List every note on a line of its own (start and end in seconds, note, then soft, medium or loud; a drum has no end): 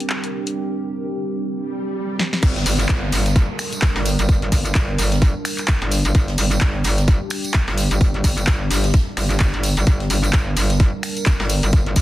0.00 2.39 G3 medium
0.00 2.39 C4 medium
0.00 0.57 D4 medium
0.00 2.42 G4 medium
0.00 0.57 A#4 medium
0.00 0.57 G5 medium
0.00 closed hi-hat medium
0.10 clap loud
0.24 closed hi-hat soft
0.47 closed hi-hat medium
1.50 swell medium
2.19 snare medium
2.33 snare medium
2.43 2.64 G1 loud
2.43 12.02 G3 medium
2.43 12.02 D4 medium
2.43 6.14 A#4 medium
2.43 kick loud
2.43 closed hi-hat medium
2.43 crash loud
2.43 tambourine soft
2.43 downlifter medium
2.56 snare soft
2.56 closed hi-hat soft
2.66 2.88 G1 medium
2.66 closed hi-hat medium
2.66 open hi-hat loud
2.66 tambourine medium
2.79 closed hi-hat soft
2.79 tambourine soft
2.89 3.11 G1 loud
2.89 kick loud
2.89 snare loud
2.89 clap loud
2.89 closed hi-hat medium
2.89 tambourine soft
3.12 3.47 G1 loud
3.12 closed hi-hat medium
3.12 open hi-hat medium
3.12 tambourine loud
3.26 snare soft
3.26 closed hi-hat medium
3.26 tambourine medium
3.36 kick loud
3.36 closed hi-hat medium
3.36 tambourine soft
3.59 finger snap medium
3.59 closed hi-hat medium
3.59 open hi-hat loud
3.59 tambourine medium
3.73 closed hi-hat medium
3.73 tambourine medium
3.82 kick loud
3.82 snare loud
3.82 clap loud
3.82 closed hi-hat medium
3.95 4.17 G1 medium
3.95 snare medium
3.95 closed hi-hat soft
4.05 closed hi-hat medium
4.05 open hi-hat medium
4.05 tambourine loud
4.19 4.50 G1 loud
4.19 closed hi-hat medium
4.19 tambourine medium
4.29 kick loud
4.29 closed hi-hat medium
4.42 closed hi-hat soft
4.52 4.74 G1 medium
4.52 kick medium
4.52 closed hi-hat medium
4.52 open hi-hat loud
4.52 tambourine medium
4.65 closed hi-hat medium
4.65 closed hi-hat soft
4.65 tambourine medium
4.75 4.97 G1 loud
4.75 kick loud
4.75 snare loud
4.75 clap loud
4.75 closed hi-hat medium
4.75 tambourine soft
4.98 5.33 G1 loud
4.98 closed hi-hat medium
4.98 open hi-hat medium
4.98 tambourine medium
5.12 snare medium
5.12 closed hi-hat medium
5.12 tambourine soft
5.22 kick loud
5.22 closed hi-hat medium
5.22 tambourine soft
5.45 finger snap medium
5.45 closed hi-hat medium
5.45 open hi-hat loud
5.45 tambourine medium
5.58 clap soft
5.58 closed hi-hat soft
5.58 tambourine medium
5.68 kick loud
5.68 snare loud
5.68 clap loud
5.68 closed hi-hat loud
5.68 closed hi-hat medium
5.68 tambourine soft
5.82 6.03 G1 loud
5.82 closed hi-hat soft
5.91 closed hi-hat medium
5.91 open hi-hat loud
5.91 tambourine loud
6.05 6.13 G1 loud
6.05 closed hi-hat soft
6.05 tambourine medium
6.15 6.36 G1 loud
6.15 9.86 G4 medium
6.15 kick loud
6.15 closed hi-hat medium
6.15 tambourine soft
6.28 snare soft
6.28 closed hi-hat soft
6.37 6.60 G1 loud
6.37 closed hi-hat medium
6.37 open hi-hat loud
6.37 tambourine loud
6.51 closed hi-hat soft
6.51 tambourine medium
6.61 6.83 G1 loud
6.61 kick loud
6.61 snare loud
6.61 clap loud
6.61 closed hi-hat medium
6.61 tambourine soft
6.84 7.19 G1 medium
6.84 closed hi-hat medium
6.84 open hi-hat medium
6.84 tambourine medium
6.98 snare soft
6.98 closed hi-hat medium
6.98 tambourine medium
7.08 kick loud
7.08 closed hi-hat medium
7.08 tambourine soft
7.30 finger snap medium
7.30 closed hi-hat medium
7.30 open hi-hat loud
7.30 tambourine medium
7.44 closed hi-hat soft
7.44 tambourine medium
7.53 kick loud
7.53 snare loud
7.53 clap loud
7.53 closed hi-hat medium
7.53 tambourine soft
7.68 7.89 G1 medium
7.68 snare medium
7.68 closed hi-hat soft
7.78 closed hi-hat medium
7.78 open hi-hat loud
7.78 tambourine medium
7.91 8.22 G1 loud
7.91 closed hi-hat medium
7.91 tambourine medium
8.01 kick loud
8.01 closed hi-hat medium
8.01 tambourine soft
8.14 closed hi-hat soft
8.24 8.46 G1 medium
8.24 kick medium
8.24 closed hi-hat medium
8.24 open hi-hat loud
8.24 tambourine medium
8.37 closed hi-hat soft
8.37 tambourine soft
8.47 8.69 G1 loud
8.47 kick loud
8.47 snare loud
8.47 clap loud
8.47 closed hi-hat medium
8.71 8.92 G1 loud
8.71 closed hi-hat medium
8.71 open hi-hat loud
8.71 tambourine medium
8.84 snare medium
8.84 closed hi-hat soft
8.84 tambourine medium
8.94 kick loud
8.94 snare loud
8.94 closed hi-hat medium
8.94 tambourine soft
9.17 9.52 G1 loud
9.17 finger snap medium
9.17 snare loud
9.17 closed hi-hat medium
9.17 open hi-hat loud
9.17 tambourine loud
9.30 clap soft
9.30 closed hi-hat soft
9.30 tambourine medium
9.40 kick loud
9.40 snare loud
9.40 clap loud
9.40 closed hi-hat medium
9.40 tambourine soft
9.54 9.75 G1 medium
9.54 closed hi-hat soft
9.63 closed hi-hat medium
9.63 open hi-hat loud
9.63 tambourine medium
9.77 9.85 G1 medium
9.77 closed hi-hat soft
9.77 tambourine medium
9.87 10.09 G1 loud
9.87 12.02 A#4 medium
9.87 kick loud
9.87 closed hi-hat medium
10.00 snare soft
10.00 closed hi-hat soft
10.10 10.32 G1 medium
10.10 closed hi-hat medium
10.10 open hi-hat loud
10.10 tambourine medium
10.24 closed hi-hat soft
10.24 tambourine medium
10.33 10.55 G1 loud
10.33 kick loud
10.33 snare loud
10.33 clap loud
10.33 closed hi-hat medium
10.33 tambourine soft
10.57 10.91 G1 loud
10.57 closed hi-hat medium
10.57 open hi-hat medium
10.57 tambourine medium
10.70 snare soft
10.70 closed hi-hat medium
10.70 tambourine soft
10.79 kick loud
10.79 closed hi-hat medium
10.79 tambourine soft
11.03 finger snap medium
11.03 closed hi-hat medium
11.03 open hi-hat loud
11.03 tambourine medium
11.17 closed hi-hat soft
11.17 tambourine medium
11.26 kick loud
11.26 snare loud
11.26 clap loud
11.26 closed hi-hat medium
11.26 tambourine soft
11.40 11.61 G1 medium
11.40 snare medium
11.40 closed hi-hat soft
11.49 closed hi-hat medium
11.49 open hi-hat medium
11.49 tambourine medium
11.63 11.95 G1 loud
11.63 closed hi-hat soft
11.63 tambourine medium
11.73 kick loud
11.73 closed hi-hat medium
11.86 closed hi-hat soft
11.96 12.02 G1 medium
11.96 kick medium
11.96 closed hi-hat medium
11.96 open hi-hat loud
11.96 tambourine medium